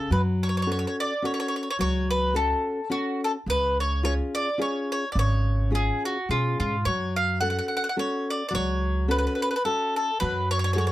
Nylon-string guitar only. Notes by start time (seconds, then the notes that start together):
0.11 F#3
0.67 C#4 F#4 A4
1.22 C#4 F#4 A4
1.79 F#3
2.34 C#4 F#4 A4
2.90 C#4 F#4 A4
3.47 C#3
4.03 C#4 F4 G#4
4.58 C#4 F4 G#4
5.15 C#3
5.71 C#4 F4 G#4
6.30 C#4 F4 G#4
6.87 F#3
7.41 C#4 F#4 A4
7.97 C#4 F#4 A4
8.51 F#3
9.08 C#4 F#4 A4
9.65 C#4 F#4 A4
10.21 F#3
10.75 F#4 G#4 A4